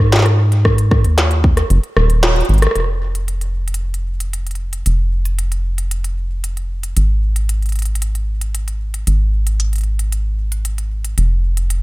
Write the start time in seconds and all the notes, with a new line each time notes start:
Already playing: G#2
0.12 snare, closed hi-hat
0.16 snare
0.19 snare
0.22 cross-stick, snare, closed hi-hat
0.52 closed hi-hat
0.65 kick, cross-stick
0.78 closed hi-hat
0.91 kick, cross-stick
1.04 D#2, closed hi-hat
1.18 snare, closed hi-hat
1.31 closed hi-hat
1.44 kick
1.57 cross-stick, closed hi-hat
1.70 F#1, closed hi-hat
1.83 closed hi-hat
1.97 D#1, cross-stick
2.10 closed hi-hat
2.23 cross-stick, snare, closed hi-hat
2.36 closed hi-hat
2.40 closed hi-hat
2.45 closed hi-hat
2.49 G#1, closed hi-hat
2.54 closed hi-hat
2.58 closed hi-hat
2.62 cross-stick, closed hi-hat
2.67 cross-stick
2.71 cross-stick
2.75 F1, cross-stick, closed hi-hat
2.80 cross-stick
2.84 cross-stick
3.15 closed hi-hat
3.28 closed hi-hat
3.41 closed hi-hat
3.68 closed hi-hat
3.74 closed hi-hat
3.94 closed hi-hat
4.20 closed hi-hat
4.33 closed hi-hat
4.47 closed hi-hat
4.51 closed hi-hat
4.55 closed hi-hat
4.73 closed hi-hat
4.86 F1, closed hi-hat
5.25 closed hi-hat
5.39 closed hi-hat
5.52 closed hi-hat
5.78 closed hi-hat
5.91 closed hi-hat
6.04 closed hi-hat
6.44 closed hi-hat
6.57 closed hi-hat
6.83 closed hi-hat
6.97 G#1, closed hi-hat
7.36 closed hi-hat
7.49 closed hi-hat
7.62 closed hi-hat
7.66 closed hi-hat
7.69 closed hi-hat
7.72 closed hi-hat
7.76 closed hi-hat
7.79 closed hi-hat
7.82 closed hi-hat
7.85 closed hi-hat
7.95 closed hi-hat
8.02 closed hi-hat
8.15 closed hi-hat
8.41 closed hi-hat
8.55 closed hi-hat
8.68 closed hi-hat
8.94 closed hi-hat
9.07 G#1, closed hi-hat
9.47 closed hi-hat
9.60 closed hi-hat
9.73 closed hi-hat
9.76 closed hi-hat
9.78 closed hi-hat
9.81 closed hi-hat
9.84 closed hi-hat
9.99 closed hi-hat
10.12 closed hi-hat
10.52 closed hi-hat
10.65 closed hi-hat
10.78 closed hi-hat
11.05 closed hi-hat
11.18 F1, closed hi-hat
11.57 closed hi-hat
11.70 closed hi-hat